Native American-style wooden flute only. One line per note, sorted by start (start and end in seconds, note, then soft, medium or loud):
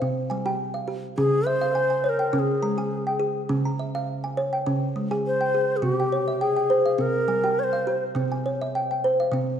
1.17 1.48 G#4 loud
1.46 2.06 C5 loud
2.06 2.35 A#4 medium
2.06 2.10 C5 medium
2.35 2.40 A#4 medium
2.39 3.22 G#4 medium
5.27 5.78 C5 loud
5.77 5.84 G#4 medium
5.82 5.93 F#4 loud
5.93 6.43 G4 loud
6.42 7.02 G#4 medium
7.01 7.61 A#4 medium
7.59 7.65 C#5 medium
7.64 8.03 C5 medium